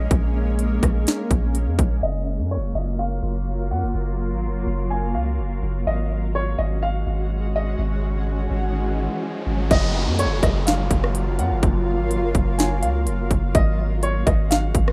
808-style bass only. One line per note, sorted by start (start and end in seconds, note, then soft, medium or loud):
0.11 0.80 A#1 loud
0.83 1.06 A#1 loud
1.31 1.68 A#1 loud
1.67 1.78 F2 loud
1.79 2.02 A#1 loud
2.03 2.40 F#1 loud
2.39 2.58 F#2 loud
2.57 2.74 F#1 medium
2.75 3.21 F#1 loud
3.23 3.72 F#1 loud
3.71 3.84 F#2 loud
3.83 3.94 F#1 loud
3.95 4.32 F#1 loud
4.31 4.50 G#1 loud
4.49 4.66 F#1 medium
4.67 5.16 F#1 loud
5.15 5.40 C#2 loud
5.39 5.62 F#1 loud
5.63 5.86 F#1 loud
5.87 6.56 G#1 loud
6.59 7.05 G#1 loud
7.07 7.76 G#1 loud
7.79 8.48 G#1 loud
8.51 9.08 G#1 loud
9.47 9.70 G#1 loud
9.71 10.08 F#1 loud
10.07 10.26 F#2 loud
10.25 10.42 F#1 loud
10.43 10.89 F#1 loud
10.91 11.40 F#1 loud
11.39 11.52 F#2 loud
11.51 11.62 F#1 loud
11.63 12.00 F#1 loud
11.99 12.18 G#1 loud
12.17 12.34 F#1 medium
12.35 12.84 F#1 loud
12.83 13.08 C#2 loud
13.07 13.30 F#1 loud
13.31 13.54 F#1 loud
13.55 14.24 G#1 loud
14.27 14.73 G#1 loud
14.75 14.93 G#1 loud